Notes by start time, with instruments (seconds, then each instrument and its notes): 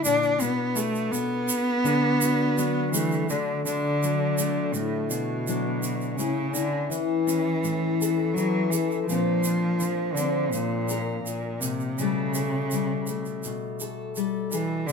Already playing: steel-string acoustic guitar D3 C4 A#4
0.05 steel-string acoustic guitar A#2, cello D4, shaker
0.23 shaker
0.40 steel-string acoustic guitar B2 D4, cello B3, shaker
0.76 cello A3, steel-string acoustic guitar A4, shaker
0.95 shaker
1.11 steel-string acoustic guitar B2, cello B3, shaker
1.49 shaker
1.84 steel-string acoustic guitar D3 D4, shaker
2.21 steel-string acoustic guitar F#4, shaker
2.58 steel-string acoustic guitar F#3 D4, shaker
2.92 cello E3, steel-string acoustic guitar A3, shaker
3.12 shaker
3.29 steel-string acoustic guitar D3 A3, cello D3, shaker
3.65 cello D3, steel-string acoustic guitar D4, shaker
4.03 steel-string acoustic guitar F#3, shaker
4.38 steel-string acoustic guitar A3, shaker
4.74 cello A2, steel-string acoustic guitar A2, shaker
5.10 cello B2, steel-string acoustic guitar F#4, shaker
5.47 steel-string acoustic guitar F#3 D4, shaker
5.83 steel-string acoustic guitar F#4, shaker
6.01 shaker
6.17 steel-string acoustic guitar A2 C#4, cello C#3, shaker
6.53 cello D3, steel-string acoustic guitar E4, shaker
6.90 cello E3, steel-string acoustic guitar E3, shaker
7.27 steel-string acoustic guitar C#4, shaker
7.63 steel-string acoustic guitar A2, shaker
8.02 steel-string acoustic guitar A4, shaker
8.33 steel-string acoustic guitar E3 E4, cello F#3, shaker
8.70 cello E3, steel-string acoustic guitar A4, shaker
8.91 shaker
9.04 cello F3
9.09 steel-string acoustic guitar A#2 F3 C4 D4 A#4, shaker
9.44 steel-string acoustic guitar D4, shaker
9.80 steel-string acoustic guitar F3, shaker
10.14 cello D3, shaker
10.19 steel-string acoustic guitar C4
10.51 cello A#2, steel-string acoustic guitar A#2, shaker
10.89 steel-string acoustic guitar A#4, shaker
11.23 cello A#2, shaker
11.60 steel-string acoustic guitar A#2, cello C3, shaker
11.80 shaker
11.98 steel-string acoustic guitar B2 G3 A3 A4, cello C#3, shaker
12.34 steel-string acoustic guitar A4, shaker
12.71 steel-string acoustic guitar G3, shaker
13.07 steel-string acoustic guitar A3, shaker
13.25 shaker
13.43 steel-string acoustic guitar B2, shaker
13.80 steel-string acoustic guitar A4, shaker
14.16 steel-string acoustic guitar G3 A4, shaker
14.51 cello E3, steel-string acoustic guitar A4, shaker
14.87 cello D3, shaker